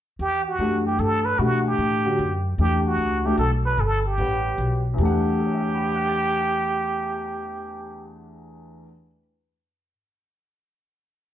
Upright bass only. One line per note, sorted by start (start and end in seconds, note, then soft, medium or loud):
0.19 0.58 E2 medium
0.59 0.98 F#2 medium
0.99 1.38 G2 medium
1.39 1.78 B2 medium
1.78 2.18 A2 medium
2.19 2.58 F#2 medium
2.58 2.97 E2 medium
2.98 3.37 C#2 medium
3.38 3.77 B1 medium
3.77 4.17 G1 medium
4.18 4.57 A1 medium
4.58 4.97 B1 medium
4.98 8.83 E2 medium